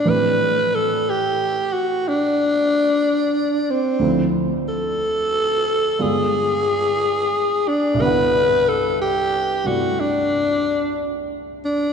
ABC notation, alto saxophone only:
X:1
M:4/4
L:1/16
Q:"Swing" 1/4=60
K:Ador
V:1 name="Alto saxophone"
B2 A2 G2 F2 D6 C2- | C z A6 _A6 D2 | B2 A2 G2 F2 D4- D z D2 |]